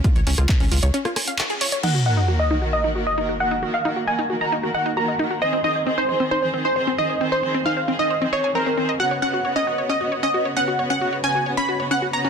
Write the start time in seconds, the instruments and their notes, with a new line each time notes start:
0.04 synth arpeggio sound F4, kick, closed hi-hat
0.16 analog synth bass C#2, synth arpeggio sound C#5, closed hi-hat
0.27 analog synth bass C#2, synth arpeggio sound C#4, open hi-hat
0.38 analog synth bass C#2, synth arpeggio sound F4, cross-stick, closed hi-hat
0.49 synth arpeggio sound C#5, kick, clap, closed hi-hat
0.60 analog synth bass C#2, synth arpeggio sound C#4, open hi-hat
0.71 analog synth bass C#2, synth arpeggio sound F4, open hi-hat
0.83 analog synth bass C#2, synth arpeggio sound C#5, closed hi-hat
0.94 synth arpeggio sound C#4, closed hi-hat
1.05 synth arpeggio sound F4, cross-stick, closed hi-hat
1.16 synth arpeggio sound G#5, cross-stick, open hi-hat
1.28 synth arpeggio sound F5, closed hi-hat
1.39 synth arpeggio sound C#6, clap, closed hi-hat
1.50 synth arpeggio sound G#4, closed hi-hat
1.61 synth arpeggio sound C#5, open hi-hat
1.72 synth arpeggio sound C#5, closed hi-hat
1.83 string section D#3 A#3 F#4 A#4, synth arpeggio sound D#4, supersaw synth F#5, crash, sub drop
1.95 synth arpeggio sound F#4
2.06 string section D#3 A#3 F#4 A#4, synth arpeggio sound D#5, supersaw synth F#5
2.17 synth arpeggio sound D#4
2.28 string section D#3 A#3 F#4 A#4, synth arpeggio sound F#4
2.39 synth arpeggio sound D#5, supersaw synth D#5
2.51 string section D#3 A#3 F#4 A#4, synth arpeggio sound D#4
2.62 string section D#3 A#3 F#4 A#4, synth arpeggio sound F#4
2.73 synth arpeggio sound D#5, supersaw synth D#5
2.84 string section D#3 A#3 F#4 A#4, synth arpeggio sound D#4
2.95 string section D#3 A#3 F#4 A#4, synth arpeggio sound F#4
3.06 synth arpeggio sound D#5, supersaw synth D#5
3.18 string section D#3 A#3 F#4 A#4, synth arpeggio sound D#4
3.29 synth arpeggio sound F#4
3.40 string section D#3 A#3 F#4 A#4, synth arpeggio sound D#5, supersaw synth F#5
3.51 synth arpeggio sound D#4
3.63 string section D#3 A#3 F#4 A#4, synth arpeggio sound F#4
3.74 synth arpeggio sound D#5, supersaw synth F5
3.85 string section D#3 A#3 F#4 A#4, synth arpeggio sound D#4
3.96 synth arpeggio sound F#4
4.07 string section D#3 A#3 F#4 A#4, synth arpeggio sound D#5, supersaw synth G#5
4.19 synth arpeggio sound D#4
4.30 string section D#3 A#3 F#4 A#4, synth arpeggio sound F#4
4.41 string section D#3 A#3 F#4 A#4, synth arpeggio sound D#5, supersaw synth A#5
4.52 synth arpeggio sound D#4
4.63 string section D#3 A#3 F#4 A#4, synth arpeggio sound F#4
4.74 string section D#3 A#3 F#4 A#4, synth arpeggio sound D#5, supersaw synth F#5
4.86 synth arpeggio sound D#4
4.97 string section D#3 A#3 F#4 A#4, synth arpeggio sound F#4, supersaw synth A#5
5.08 synth arpeggio sound D#5
5.19 string section D#3 A#3 F#4 A#4, synth arpeggio sound D#4
5.31 synth arpeggio sound F#4
5.42 string section D#3 C4 G#4 C5, synth arpeggio sound C5, supersaw synth D#5
5.53 synth arpeggio sound C4
5.64 string section D#3 C4 G#4 C5, synth arpeggio sound D#4, supersaw synth D#5
5.75 synth arpeggio sound C5
5.86 string section D#3 C4 G#4 C5, synth arpeggio sound C4
5.98 synth arpeggio sound D#4, supersaw synth C5
6.09 string section D#3 C4 G#4 C5, synth arpeggio sound C5
6.20 string section D#3 C4 G#4 C5, synth arpeggio sound C4
6.31 synth arpeggio sound D#4, supersaw synth C5
6.42 string section D#3 C4 G#4 C5, synth arpeggio sound C5
6.54 string section D#3 C4 G#4 C5, synth arpeggio sound C4
6.65 synth arpeggio sound D#4, supersaw synth C5
6.76 string section D#3 C4 G#4 C5, synth arpeggio sound C5
6.87 synth arpeggio sound C4
6.98 string section D#3 C4 G#4 C5, synth arpeggio sound D#4, supersaw synth D#5
7.10 synth arpeggio sound C5
7.21 string section D#3 C4 G#4 C5, synth arpeggio sound C4
7.32 synth arpeggio sound D#4, supersaw synth C5
7.43 string section D#3 C4 G#4 C5, synth arpeggio sound C5
7.54 synth arpeggio sound C4
7.66 string section D#3 C4 G#4 C5, synth arpeggio sound D#4, supersaw synth F5
7.77 synth arpeggio sound C5
7.88 string section D#3 C4 G#4 C5, synth arpeggio sound C4
7.99 string section D#3 C4 G#4 C5, synth arpeggio sound D#4, supersaw synth D#5
8.10 synth arpeggio sound C5
8.21 string section D#3 C4 G#4 C5, synth arpeggio sound C4
8.33 string section D#3 C4 G#4 C5, supersaw synth C#5, synth arpeggio sound D#5
8.44 synth arpeggio sound G#5
8.55 string section D#3 C4 G#4 C5, synth arpeggio sound C4, supersaw synth A#4
8.66 synth arpeggio sound C4
8.77 string section D#3 C4 G#4 C5, synth arpeggio sound C4
8.89 synth arpeggio sound D#5
9.00 string section C#3 B3 F#4 C#5, synth arpeggio sound F#4, supersaw synth F#5
9.11 synth arpeggio sound C#5
9.22 string section C#3 B3 F#4 C#5, synth arpeggio sound C#4, supersaw synth F#5
9.33 synth arpeggio sound F#4
9.45 string section C#3 B3 F#4 C#5, synth arpeggio sound C#5
9.56 synth arpeggio sound C#4, supersaw synth D#5
9.67 string section C#3 B3 F#4 C#5, synth arpeggio sound F#4
9.78 string section C#3 B3 F#4 C#5, synth arpeggio sound C#5
9.89 synth arpeggio sound C#4, supersaw synth D#5
10.01 string section C#3 B3 F#4 C#5, synth arpeggio sound F#4
10.12 string section C#3 B3 F#4 C#5, synth arpeggio sound C#5
10.23 synth arpeggio sound C#4, supersaw synth D#5
10.34 string section C#3 B3 F#4 C#5, synth arpeggio sound F#4
10.45 synth arpeggio sound C#5
10.57 string section C#3 B3 F#4 C#5, synth arpeggio sound C#4, supersaw synth F#5
10.68 synth arpeggio sound F#4
10.79 string section C#3 B3 F#4 C#5, synth arpeggio sound C#5
10.90 synth arpeggio sound C#4, supersaw synth F#5
11.01 string section C#3 B3 F#4 C#5, synth arpeggio sound F#4
11.13 synth arpeggio sound C#5
11.24 string section C#3 B3 F#4 C#5, synth arpeggio sound C#4, supersaw synth G#5
11.35 synth arpeggio sound F#4
11.46 string section C#3 B3 F#4 C#5, synth arpeggio sound C#5
11.57 string section C#3 B3 F#4 C#5, synth arpeggio sound C#4, supersaw synth B5
11.69 synth arpeggio sound F#4
11.80 string section C#3 B3 F#4 C#5, synth arpeggio sound C#5
11.91 string section C#3 B3 F#4 C#5, synth arpeggio sound C#4, supersaw synth F#5
12.02 synth arpeggio sound F#4
12.13 string section C#3 B3 F#4 C#5, synth arpeggio sound C#5, supersaw synth A#5
12.24 synth arpeggio sound C#4